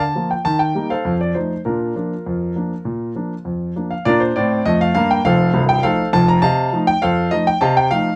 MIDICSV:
0, 0, Header, 1, 2, 480
1, 0, Start_track
1, 0, Key_signature, -2, "major"
1, 0, Tempo, 595829
1, 371, Time_signature, 2, 2, 24, 8
1, 6570, End_track
2, 0, Start_track
2, 0, Title_t, "Grand piano"
2, 0, Program_c, 0, 0
2, 0, Note_on_c, 0, 50, 65
2, 0, Note_on_c, 0, 81, 90
2, 93, Note_off_c, 0, 50, 0
2, 125, Note_on_c, 0, 53, 45
2, 130, Note_on_c, 0, 58, 48
2, 130, Note_on_c, 0, 65, 44
2, 229, Note_off_c, 0, 81, 0
2, 247, Note_on_c, 0, 79, 66
2, 258, Note_off_c, 0, 53, 0
2, 262, Note_off_c, 0, 58, 0
2, 262, Note_off_c, 0, 65, 0
2, 361, Note_on_c, 0, 81, 98
2, 364, Note_on_c, 0, 51, 74
2, 369, Note_off_c, 0, 79, 0
2, 477, Note_on_c, 0, 79, 80
2, 486, Note_off_c, 0, 81, 0
2, 571, Note_off_c, 0, 51, 0
2, 605, Note_on_c, 0, 55, 45
2, 606, Note_on_c, 0, 58, 48
2, 613, Note_on_c, 0, 63, 49
2, 711, Note_off_c, 0, 79, 0
2, 726, Note_on_c, 0, 77, 82
2, 732, Note_on_c, 0, 72, 62
2, 735, Note_on_c, 0, 69, 59
2, 738, Note_off_c, 0, 55, 0
2, 739, Note_off_c, 0, 58, 0
2, 744, Note_off_c, 0, 63, 0
2, 846, Note_on_c, 0, 41, 71
2, 920, Note_off_c, 0, 77, 0
2, 955, Note_off_c, 0, 72, 0
2, 956, Note_off_c, 0, 69, 0
2, 973, Note_on_c, 0, 74, 69
2, 1053, Note_off_c, 0, 41, 0
2, 1085, Note_on_c, 0, 72, 62
2, 1089, Note_on_c, 0, 53, 42
2, 1093, Note_off_c, 0, 74, 0
2, 1093, Note_on_c, 0, 63, 41
2, 1096, Note_on_c, 0, 57, 38
2, 1223, Note_off_c, 0, 53, 0
2, 1226, Note_off_c, 0, 63, 0
2, 1228, Note_off_c, 0, 57, 0
2, 1282, Note_off_c, 0, 72, 0
2, 1329, Note_on_c, 0, 70, 60
2, 1335, Note_on_c, 0, 46, 60
2, 1338, Note_on_c, 0, 65, 45
2, 1341, Note_on_c, 0, 62, 48
2, 1541, Note_off_c, 0, 46, 0
2, 1570, Note_off_c, 0, 62, 0
2, 1577, Note_on_c, 0, 53, 35
2, 1581, Note_on_c, 0, 58, 36
2, 1583, Note_on_c, 0, 62, 42
2, 1710, Note_off_c, 0, 53, 0
2, 1713, Note_off_c, 0, 58, 0
2, 1714, Note_off_c, 0, 62, 0
2, 1825, Note_on_c, 0, 41, 54
2, 2028, Note_off_c, 0, 41, 0
2, 2062, Note_on_c, 0, 53, 39
2, 2063, Note_on_c, 0, 58, 38
2, 2066, Note_on_c, 0, 62, 40
2, 2195, Note_off_c, 0, 53, 0
2, 2196, Note_off_c, 0, 58, 0
2, 2198, Note_off_c, 0, 62, 0
2, 2296, Note_on_c, 0, 46, 59
2, 2505, Note_off_c, 0, 46, 0
2, 2541, Note_on_c, 0, 53, 37
2, 2548, Note_on_c, 0, 58, 36
2, 2548, Note_on_c, 0, 62, 40
2, 2675, Note_off_c, 0, 53, 0
2, 2680, Note_off_c, 0, 58, 0
2, 2680, Note_off_c, 0, 62, 0
2, 2687, Note_off_c, 0, 70, 0
2, 2780, Note_on_c, 0, 41, 52
2, 2989, Note_off_c, 0, 41, 0
2, 2998, Note_off_c, 0, 65, 0
2, 3029, Note_on_c, 0, 58, 36
2, 3030, Note_on_c, 0, 53, 37
2, 3032, Note_on_c, 0, 62, 39
2, 3146, Note_on_c, 0, 77, 68
2, 3161, Note_off_c, 0, 58, 0
2, 3162, Note_off_c, 0, 53, 0
2, 3164, Note_off_c, 0, 62, 0
2, 3266, Note_on_c, 0, 74, 98
2, 3268, Note_off_c, 0, 77, 0
2, 3269, Note_on_c, 0, 46, 81
2, 3272, Note_on_c, 0, 65, 79
2, 3278, Note_on_c, 0, 70, 74
2, 3284, Note_on_c, 0, 62, 75
2, 3383, Note_off_c, 0, 65, 0
2, 3385, Note_on_c, 0, 72, 81
2, 3386, Note_off_c, 0, 70, 0
2, 3388, Note_off_c, 0, 74, 0
2, 3461, Note_off_c, 0, 46, 0
2, 3470, Note_off_c, 0, 62, 0
2, 3507, Note_off_c, 0, 72, 0
2, 3511, Note_on_c, 0, 74, 87
2, 3515, Note_on_c, 0, 45, 82
2, 3531, Note_on_c, 0, 60, 82
2, 3705, Note_off_c, 0, 45, 0
2, 3714, Note_off_c, 0, 60, 0
2, 3738, Note_off_c, 0, 74, 0
2, 3750, Note_on_c, 0, 75, 99
2, 3751, Note_on_c, 0, 41, 80
2, 3764, Note_on_c, 0, 57, 79
2, 3869, Note_off_c, 0, 75, 0
2, 3875, Note_on_c, 0, 77, 96
2, 3942, Note_off_c, 0, 41, 0
2, 3949, Note_off_c, 0, 57, 0
2, 3972, Note_off_c, 0, 77, 0
2, 3984, Note_on_c, 0, 77, 96
2, 3988, Note_on_c, 0, 43, 81
2, 4004, Note_on_c, 0, 58, 84
2, 4106, Note_off_c, 0, 77, 0
2, 4114, Note_on_c, 0, 79, 87
2, 4180, Note_off_c, 0, 43, 0
2, 4189, Note_off_c, 0, 58, 0
2, 4228, Note_on_c, 0, 77, 102
2, 4231, Note_off_c, 0, 79, 0
2, 4231, Note_on_c, 0, 29, 79
2, 4231, Note_on_c, 0, 41, 78
2, 4239, Note_on_c, 0, 72, 73
2, 4240, Note_on_c, 0, 69, 73
2, 4421, Note_off_c, 0, 29, 0
2, 4421, Note_off_c, 0, 41, 0
2, 4461, Note_on_c, 0, 24, 80
2, 4462, Note_on_c, 0, 36, 83
2, 4515, Note_off_c, 0, 77, 0
2, 4567, Note_off_c, 0, 72, 0
2, 4568, Note_off_c, 0, 69, 0
2, 4583, Note_on_c, 0, 79, 95
2, 4655, Note_off_c, 0, 24, 0
2, 4655, Note_off_c, 0, 36, 0
2, 4697, Note_on_c, 0, 77, 96
2, 4699, Note_on_c, 0, 57, 51
2, 4699, Note_on_c, 0, 63, 54
2, 4701, Note_on_c, 0, 53, 52
2, 4704, Note_off_c, 0, 79, 0
2, 4706, Note_on_c, 0, 69, 73
2, 4706, Note_on_c, 0, 72, 69
2, 4832, Note_off_c, 0, 57, 0
2, 4832, Note_off_c, 0, 63, 0
2, 4834, Note_off_c, 0, 53, 0
2, 4891, Note_off_c, 0, 77, 0
2, 4928, Note_off_c, 0, 69, 0
2, 4928, Note_off_c, 0, 72, 0
2, 4939, Note_on_c, 0, 41, 88
2, 4940, Note_on_c, 0, 29, 81
2, 4940, Note_on_c, 0, 81, 102
2, 5061, Note_off_c, 0, 81, 0
2, 5062, Note_on_c, 0, 82, 98
2, 5132, Note_off_c, 0, 41, 0
2, 5133, Note_off_c, 0, 29, 0
2, 5172, Note_on_c, 0, 81, 104
2, 5174, Note_on_c, 0, 48, 85
2, 5182, Note_off_c, 0, 82, 0
2, 5183, Note_on_c, 0, 75, 75
2, 5184, Note_on_c, 0, 77, 77
2, 5381, Note_off_c, 0, 48, 0
2, 5419, Note_on_c, 0, 53, 55
2, 5422, Note_on_c, 0, 57, 52
2, 5425, Note_on_c, 0, 63, 61
2, 5462, Note_off_c, 0, 81, 0
2, 5515, Note_off_c, 0, 75, 0
2, 5516, Note_off_c, 0, 77, 0
2, 5537, Note_on_c, 0, 79, 97
2, 5551, Note_off_c, 0, 53, 0
2, 5553, Note_off_c, 0, 57, 0
2, 5555, Note_off_c, 0, 63, 0
2, 5655, Note_on_c, 0, 77, 100
2, 5658, Note_off_c, 0, 79, 0
2, 5659, Note_on_c, 0, 41, 75
2, 5665, Note_on_c, 0, 72, 75
2, 5667, Note_on_c, 0, 69, 72
2, 5863, Note_off_c, 0, 41, 0
2, 5884, Note_off_c, 0, 77, 0
2, 5885, Note_off_c, 0, 72, 0
2, 5886, Note_off_c, 0, 69, 0
2, 5890, Note_on_c, 0, 75, 98
2, 5895, Note_on_c, 0, 57, 58
2, 5898, Note_on_c, 0, 53, 54
2, 5902, Note_on_c, 0, 63, 56
2, 6014, Note_off_c, 0, 75, 0
2, 6019, Note_on_c, 0, 79, 91
2, 6028, Note_off_c, 0, 57, 0
2, 6030, Note_off_c, 0, 53, 0
2, 6033, Note_off_c, 0, 63, 0
2, 6130, Note_on_c, 0, 81, 93
2, 6134, Note_on_c, 0, 48, 92
2, 6138, Note_off_c, 0, 79, 0
2, 6138, Note_on_c, 0, 75, 74
2, 6143, Note_on_c, 0, 77, 71
2, 6249, Note_off_c, 0, 75, 0
2, 6252, Note_off_c, 0, 77, 0
2, 6253, Note_off_c, 0, 81, 0
2, 6258, Note_on_c, 0, 79, 92
2, 6339, Note_off_c, 0, 48, 0
2, 6370, Note_on_c, 0, 77, 102
2, 6374, Note_on_c, 0, 53, 53
2, 6377, Note_off_c, 0, 79, 0
2, 6378, Note_on_c, 0, 57, 56
2, 6379, Note_on_c, 0, 63, 61
2, 6506, Note_off_c, 0, 53, 0
2, 6509, Note_off_c, 0, 57, 0
2, 6509, Note_off_c, 0, 63, 0
2, 6570, Note_off_c, 0, 77, 0
2, 6570, End_track
0, 0, End_of_file